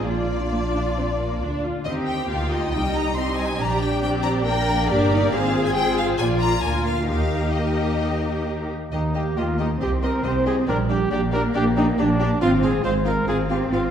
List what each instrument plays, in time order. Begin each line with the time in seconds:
0.05 double bass section A#1, viola section A#3 F4, violin section D4 D5, cello section F4
0.51 viola section A#3
0.74 viola section D4
0.96 viola section C4
1.18 viola section A#3
1.41 double bass section D2, viola section D4
1.62 viola section F4
1.85 double bass section D#2, viola section C4 D#4, cello section G4, violin section G4 D#5 G5
2.07 violin section G5
2.29 double bass section D2, viola section A#3 D#4, cello section F4, violin section F5
2.51 violin section D#5
2.73 double bass section C2, viola section G3 D#4, cello section D#4, violin section G4 D#5 G5
2.95 violin section A#5
3.17 viola section G3 C4, violin section G4 D#5 C6
3.40 violin section G#5
3.61 double bass section A#1, viola section D4, cello section G4, violin section D5 A#5
3.83 violin section G5
4.03 viola section C4, violin section G4 D5 G5
4.24 violin section A#5
4.46 viola section A#3, violin section A#4 D5 G5, cello section A#4
4.89 double bass section G1, viola section A#3 D4, cello section G4, violin section A#4 D5
5.12 viola section D#4
5.32 double bass section G#1, viola section C4 F4, cello section G#4, violin section G#4 C5 F5
5.65 violin section G#5
5.75 viola section C4 F4, violin section C5 G5
5.97 violin section F5
6.19 double bass section A#1, viola section A#3, violin section F4 D5 G#5, cello section F4
6.40 violin section A#5
6.64 double bass section D2, cello section F4, violin section F4 A#4 G#5
6.85 violin section F5
7.09 double bass section D#2, viola section A#3 D#4, violin section G4 A#4 F5, cello section G4
7.55 violin section D#5
8.92 double bass section D#2, viola section A#3, cello section A#3, trumpet D#4, violin section G4 D#5
9.15 viola section A#3, violin section G4 D#5, trumpet G4
9.37 double bass section D#2, viola section A#3, trumpet F4, violin section G4 D#5
9.59 viola section A#3, trumpet D#4, violin section G4 D#5
9.81 double bass section C2, viola section C4, cello section C4, violin section G4 D#5, trumpet G4
10.02 viola section C4, violin section G4 D#5, trumpet A#4
10.24 double bass section C2, viola section C4, violin section G4 D#5, trumpet C5
10.46 viola section C4, violin section G4 D#5, trumpet G#4
10.67 double bass section A#1, cello section G3, viola section D4, violin section G4 D5, trumpet A#4
10.89 viola section D4, violin section G4 D5, trumpet G4
11.11 double bass section A#1, cello section A#3, viola section D4, violin section G4 D5, trumpet G4
11.32 viola section D4, violin section G4 D5, trumpet A#4
11.54 double bass section A#1, viola section D4, violin section G4 D5, trumpet G4
11.76 viola section D4, trumpet D#4, violin section G4 D5
11.98 double bass section A#1, viola section D4, trumpet D4, violin section G4 D5
12.19 viola section D4, violin section G4 D5
12.41 double bass section G#1, cello section C4, viola section C4, violin section F4 F5, trumpet F4
12.62 viola section C4, violin section F4 F5, trumpet G#4
12.83 double bass section G#1, cello section G#3, viola section C4, violin section F4 F5, trumpet C5
13.05 viola section C4, violin section F4 F5, trumpet A#4
13.27 double bass section G#1, viola section C4, cello section C4, violin section F4 F5, trumpet G#4
13.49 viola section C4, violin section F4 F5, trumpet G4
13.71 double bass section G#1, viola section C4, violin section F4 F5, trumpet F4